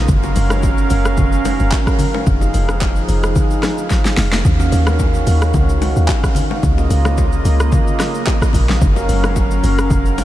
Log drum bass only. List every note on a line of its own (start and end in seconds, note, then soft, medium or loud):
0.08 0.35 F#1 loud
0.36 0.88 F#1 loud
0.91 1.16 F#1 loud
1.18 1.58 F1 medium
1.60 1.72 F#1 loud
2.27 2.53 F1 loud
2.54 3.06 F1 loud
3.09 3.35 F1 loud
4.18 4.44 F1 medium
4.45 4.71 D#2 loud
4.72 5.24 D#2 loud
5.27 5.53 D#2 loud
5.54 5.94 C#2 medium
5.96 6.08 D#2 medium
6.63 6.89 C#2 loud
6.90 7.42 C#2 loud
7.45 7.71 C#2 loud
8.54 8.80 A#1 loud
8.81 9.07 F#1 loud
9.09 9.61 F#1 loud
9.63 9.89 F#1 loud
9.91 10.24 F1 loud